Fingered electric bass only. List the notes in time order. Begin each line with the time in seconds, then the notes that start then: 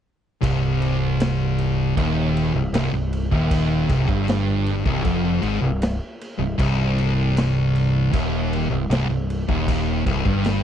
0.43 C1
1.97 D#1
2.55 C1
2.72 C1
2.93 C1
3.32 D#1
3.90 C1
4.08 G1
4.86 C1
5.05 F1
5.43 G#1
5.63 C1
6.39 C1
6.59 C1
8.14 D#1
8.71 C1
8.89 C1
9.09 C1
9.49 D#1
10.07 C1
10.26 G1